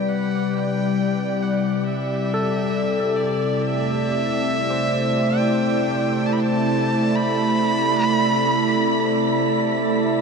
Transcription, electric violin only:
0.08 0.55 F#5 loud
0.54 1.43 G5 loud
1.42 1.85 F#5 medium
1.86 3.18 E5 loud
3.16 3.63 D5 medium
3.62 5.39 E5 loud
5.37 6.28 G5 loud
6.26 6.34 A5 medium
6.32 6.41 B5 medium
6.40 7.17 A5 loud
7.16 9.84 B5 loud

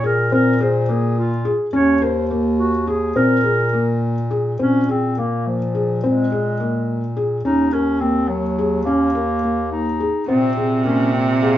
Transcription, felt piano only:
0.04 0.24 G#4 medium
0.32 0.52 C4 medium
0.60 0.81 G#4 medium
0.89 1.29 A#3 medium
1.45 1.65 G#4 medium
1.73 1.94 C#4 medium
2.02 2.22 A#4 medium
2.30 2.71 A#3 medium
2.87 3.08 G#4 medium
3.16 3.36 C4 medium
3.44 3.64 G#4 medium
3.73 4.14 A#3 medium
4.31 4.51 G#4 medium
4.59 4.80 C4 medium
4.89 5.09 G#4 soft
5.17 5.58 A#3 medium
5.75 5.95 G#4 medium
6.04 6.24 C4 medium
6.32 6.52 G#4 medium
6.60 7.00 A#3 medium
7.16 7.37 G#4 medium
7.45 7.65 C#4 medium
7.73 7.93 A#4 medium
8.01 8.42 A#3 medium
8.58 8.79 G#4 medium
8.86 9.07 C#4 medium
9.15 9.35 A#4 medium
9.43 9.84 A#3 medium
10.00 10.21 G#4 medium
10.28 10.49 C4 medium
10.57 10.77 G#4 soft
10.85 11.26 A#3 medium
11.42 11.58 G#4 medium

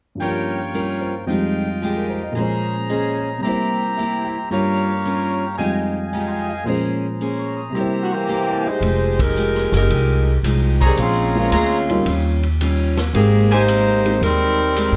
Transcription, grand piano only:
0.15 1.25 G2 soft
0.15 1.26 F3 soft
0.21 1.28 A#3 soft
0.21 1.30 C#4 soft
0.26 1.31 G4 soft
0.75 1.17 A#4 soft
1.01 1.39 C5 soft
1.26 2.35 F2 soft
1.26 2.33 F3 soft
1.26 2.36 G#3 soft
1.26 2.37 D#4 soft
1.31 2.37 G3 medium
1.82 2.08 G#4 soft
1.96 2.19 A#4 soft
2.10 2.26 C5 soft
2.23 2.42 D#5 soft
2.32 3.41 A#2 medium
2.32 3.43 F3 soft
2.37 3.44 G#3 soft
2.37 3.45 C#4 soft
2.42 3.47 C5 medium
2.90 3.32 D#5 soft
3.17 3.54 C#5 soft
3.38 4.48 C3 soft
3.38 4.49 G3 soft
3.43 4.50 A#3 soft
3.43 4.53 E4 soft
3.49 4.54 C5 medium
3.97 4.39 E5 soft
4.24 4.62 G5 soft
4.50 5.58 G2 soft
4.50 5.58 G3 soft
4.50 5.59 A#3 soft
4.50 5.59 F4 soft
4.50 5.59 C#5 medium
5.58 6.66 F2 soft
5.58 6.64 F3 soft
5.58 6.67 G3 soft
5.58 6.66 G#3 soft
5.58 6.67 D#5 medium
6.13 6.47 G#5 soft
6.32 6.59 G5 soft
6.49 6.77 F5 soft
6.64 7.73 A#2 soft
6.64 7.74 F3 soft
6.64 7.75 G#3 soft
6.64 7.75 C#4 soft
6.69 7.76 C5 soft
7.70 8.80 C3 soft
7.70 8.81 G3 soft
7.75 8.83 A#3 soft
7.75 8.84 E4 soft
7.81 8.85 C5 medium
8.29 8.63 A#5 soft
8.47 8.75 G5 soft
8.64 8.92 E5 soft
11.35 11.50 G#3 medium
11.35 11.50 A#3 medium
11.35 11.51 C4 medium
11.35 11.51 C#4 medium
11.35 11.51 F4 medium
11.89 12.04 G3 medium
11.89 12.04 A#3 medium
11.89 12.05 C#4 medium
11.89 12.05 D#4 medium
11.89 12.05 F4 medium
13.13 13.47 G#3 medium
13.13 13.47 A#3 soft
13.13 13.47 C4 soft
13.13 13.47 D#4 soft
13.13 13.47 G4 medium
14.05 14.20 G#3 medium
14.05 14.20 A#3 medium
14.05 14.20 C4 medium
14.05 14.21 D#4 medium
14.05 14.20 G4 medium

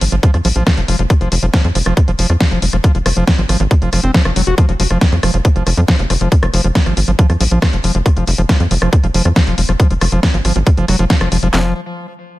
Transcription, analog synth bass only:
0.01 0.09 G#1 loud
0.12 0.19 G#1 loud
0.34 0.41 F2 medium
0.45 0.52 A#1 loud
0.56 0.63 A#1 medium
0.77 0.85 F1 medium
0.88 0.96 F1 loud
0.99 1.06 F1 medium
1.21 1.28 F1 medium
1.32 1.39 F1 loud
1.43 1.50 F1 medium
1.64 1.72 F2 medium
1.75 1.83 F1 loud
1.86 1.93 F1 medium
2.08 2.15 F1 medium
2.19 2.26 F1 loud
2.30 2.37 F2 medium
2.51 2.59 F1 medium
2.62 2.69 F1 loud
2.73 2.80 F1 medium
2.95 3.02 F1 medium
3.06 3.13 F1 loud
3.17 3.24 F1 medium
3.38 3.46 G#1 medium
3.49 3.56 G#1 medium
3.60 3.67 G#1 medium
3.82 3.89 F1 medium
3.93 4.00 F1 loud
4.04 4.11 F1 medium
4.25 4.32 F1 medium
4.36 4.43 F1 medium
4.47 4.54 F1 medium
4.69 4.76 F1 medium
4.80 4.87 F1 loud
4.90 4.98 F1 medium
5.12 5.19 F2 medium
5.23 5.30 F1 loud
5.34 5.41 F1 medium
5.56 5.63 F1 medium
5.67 5.74 F1 loud
5.77 5.85 F2 medium
5.99 6.06 F1 medium
6.10 6.17 F1 loud
6.21 6.28 F1 medium
6.43 6.50 F1 medium
6.54 6.61 F1 loud
6.64 6.72 F1 medium
6.86 6.93 G#1 medium
6.97 7.04 G#1 loud
7.08 7.15 G#1 medium
7.30 7.37 F2 medium
7.41 7.48 A#1 loud
7.51 7.59 A#1 medium
7.73 7.80 F1 medium
7.84 7.91 F1 loud
7.95 8.02 F1 medium
8.17 8.24 F1 medium
8.27 8.35 F1 loud
8.38 8.46 F1 medium
8.60 8.67 F2 medium
8.71 8.78 F1 loud
8.82 8.89 F1 medium
9.04 9.11 F1 medium
9.14 9.22 F1 loud
9.25 9.33 F2 medium
9.47 9.54 F1 medium
9.58 9.65 F1 loud
9.69 9.76 F1 medium
9.91 9.98 F1 medium
10.01 10.09 F1 loud
10.12 10.19 F1 loud
10.34 10.41 G#1 medium
10.45 10.52 G#1 loud
10.56 10.63 G#1 medium
10.77 10.85 F#1 medium
10.88 10.96 F1 loud
10.99 11.06 F1 medium
11.21 11.28 F1 medium
11.32 11.39 F1 loud
11.43 11.50 F1 medium
11.54 11.74 F1 loud

